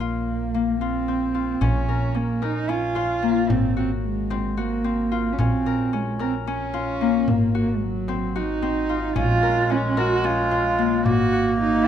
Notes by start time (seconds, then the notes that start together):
Already playing: A#1 A#3 C#4 A#4
0.00 F4
0.54 A#3
0.81 C4 F4
1.08 C4
1.35 F4
1.61 A#1 C#4, frame drum
1.89 A#4, frame drum
2.15 A#3 C#4
2.42 D#4 A#4, frame drum
2.69 C#4 F4
2.95 F4, frame drum
3.22 A#3
3.49 G#1 C4, frame drum
3.77 C4 F#4, frame drum
4.04 G#3
4.30 C4, frame drum
4.57 A#3 F#4
4.84 C4
5.12 F4
5.32 C#4
5.39 A#1 C4 C#4, frame drum
5.66 A#4, frame drum
5.93 G#3 C#4
6.19 C4 A#4, frame drum
6.47 C#4
6.74 F4, frame drum
7.01 A#3
7.28 G#1 A#3, frame drum
7.55 A#3 F#4
7.75 G#3
7.83 F#3
8.08 C4, frame drum
8.35 D#4 F#4
8.62 C4, frame drum
8.89 F4
9.16 A#1 G#3 C#4 F4, frame drum
9.43 A#4
9.70 C#4
9.97 F#4 A#4, frame drum
10.24 C#4 F4
10.51 F4, frame drum
10.78 A#3
11.05 G#1 A#3 F#4, frame drum
11.33 F#4, frame drum
11.61 D#4